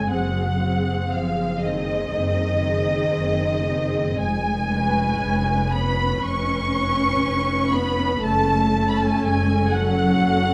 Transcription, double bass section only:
0.09 F#1
1.11 F#1
2.12 F#1
3.14 F#1
4.20 F1
5.21 F1
6.22 F1
7.23 F1
8.21 F#1
9.21 F#1
10.21 F#1

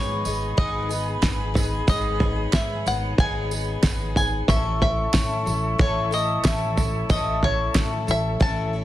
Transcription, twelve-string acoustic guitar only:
Already playing: G#3 B3 D#4 G#4
0.25 G#3 B3 D#4 G#4
0.57 G#2 D#3 G#3 B3 D#4 G#4
0.89 G#3 B3 D#4 G#4
1.21 G#3 B3 D#4 G#4
1.54 G#3 B3 D#4 G#4
1.87 G#2 D#3 G#3 B3 D#4 G#4
2.20 G#3 B3 D#4 G#4
2.53 G#3 G#4
2.86 G#3 B3 D#4 G#4
3.19 G#2 D#3 G#3 B3 D#4 G#4
3.51 G#3 B3 D#4 G#4
3.84 G#3 B3 D#4 G#4
4.17 G#3 B3 D#4 G#4
4.49 A2 E3 A3 C#4 E4 A4
4.81 A3 C#4 E4 A4
5.14 A3 C#4 E4 A4
5.46 A3 C#4 E4 A4
5.78 A2 E3 A3 C#4 E4 A4
6.11 A3 C#4 E4 A4
6.44 A3 C#4 E4 A4
6.77 A3 C#4 E4 A4
7.09 A2 E3 A3 C#4 E4 A4
7.42 A3 C#4 E4 A4
7.74 A3 C#4 E4 A4
8.07 A3 C#4 E4 A4
8.40 A2 E3 A3 C#4 E4 A4
8.73 A3 C#4 E4 A4

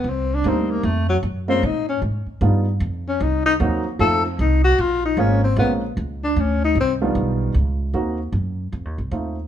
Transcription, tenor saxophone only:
Already playing: B3
0.09 C4
0.35 D4
0.48 C4
0.71 A#3
0.84 A3
1.09 F#3
1.49 C4
1.65 D#4
1.89 C#4
3.08 C#4
3.22 D#4
3.46 D#4
4.00 A4
4.25 C4
4.40 D#4
4.64 F#4
4.80 F4
5.05 D#4
5.20 C#4
5.44 C4
5.58 B3
6.23 D4
6.40 C#4
6.64 D#4
6.80 C4

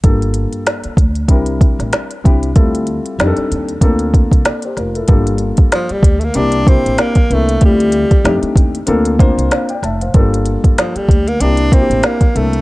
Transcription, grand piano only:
0.03 G3 A#3 D4 F4 A4
1.30 G3 C4 D4 E4 A#4
2.24 G3 C4 D4 E4 G4
2.55 G3 C4 E4 F4 A4
3.19 G3 C4 D4 D#4 G4
3.27 A4
3.81 A#3 C4 D4 F4 A4
4.46 A4 D5
4.65 G4 C5
4.78 F4 A#4
4.96 E4 A4
5.08 G3 A#3 D4 F4 A4
6.35 A#3 C4 D4 E4 G4
6.66 A#3 C4 D4 E4 G4
7.30 A#3 C4 D4 E4 A#4
7.61 A3 C4 E4 F4 G4
8.25 A3 C4 D4 D#4 G4
8.86 A#3 C4 D4 F4 A4
9.19 A#3 C4 D4 F4 C5
9.51 C5 F5
9.70 D5 G5
9.83 E5 A5
10.02 C5 F5
10.15 G3 A#3 D4 F4 A4
11.41 A#3 C4 D4 E4 G4
11.71 A#3 C4 D4 E4 F#4
11.80 G4
12.34 A#3 C4 D4 E4 A4

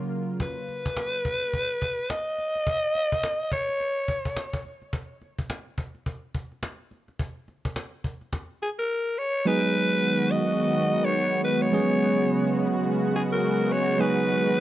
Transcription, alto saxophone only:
0.41 B4
2.10 D#5
3.52 C#5
8.62 G#4
8.79 A#4
9.18 C#5
9.47 B4
10.31 D#5
11.05 C#5
11.44 B4
11.62 C#5
13.16 G#4
13.32 A#4
13.72 C#5
14.00 B4

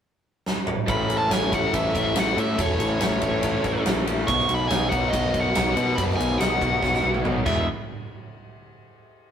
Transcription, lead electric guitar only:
0.89 B5
1.18 A5
1.32 G#5
1.53 F#5
1.75 E5
2.04 E5
2.19 F#5
2.40 E5
2.61 C#5
4.27 C#6
4.55 B5
4.68 G#5
4.89 F#5
5.10 D#5
5.41 F#5
5.74 F#5
5.95 B5
6.16 G#5
6.38 F#5
7.46 E5

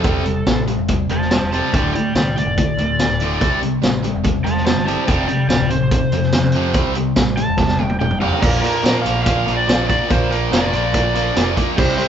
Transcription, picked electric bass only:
0.04 E1
0.47 A1
0.78 E1
1.09 E1
1.41 E1
1.73 D1
2.15 C2
2.46 F1
2.77 D2
3.09 D1
3.41 C2
3.83 A1
4.15 E1
4.45 E1
4.75 G1
5.08 F1
5.49 D1
5.81 A1
6.12 F2
6.44 F2
6.74 C2
7.16 A1
7.48 E1
7.80 E1
8.10 F1
8.43 A#1
8.84 A#2
9.06 A#1
9.47 A#1
9.68 A#1
9.89 A#1
10.11 A#1
10.52 F1
10.73 A#1
11.36 F1
11.78 C2

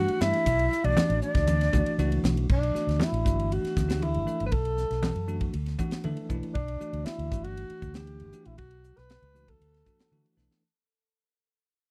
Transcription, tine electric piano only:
Already playing: E3 A3 D4 F#4
0.21 E3 A3 D4 G4
0.84 E3 A3 D4 F#4
1.72 E3 A3 D4 F#4
1.99 E3 A3 D4 F#4
2.74 E3 A3 D4 F#4
3.24 E3 A3 D4 F#4
3.88 E3 A3 D4 G4
4.26 E3 A3 D4 A4
5.28 E3 A3 D4 F#4
5.79 E3 A3 D4 F#4 F#5
6.04 E3 A3 D4 A4 E5
6.29 E3 A3 D4 E4
6.80 E3 A3 D4 F#4
7.31 E3 A3 D4 F#4
7.94 E3 A3 D4 G4
8.33 E3 A3 D4 F#4
9.34 E3 A3 D4 F#4
9.86 E3 A3 D4 F#4
10.11 E3 A3 D4 F#4
10.37 E3 A3 D4 A4

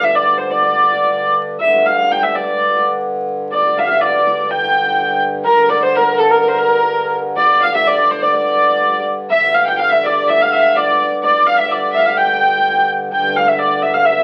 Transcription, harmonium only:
Already playing: G2 D3
1.59 G2 D3
5.46 G2 D3
9.32 G2 D3
13.11 G2 D3

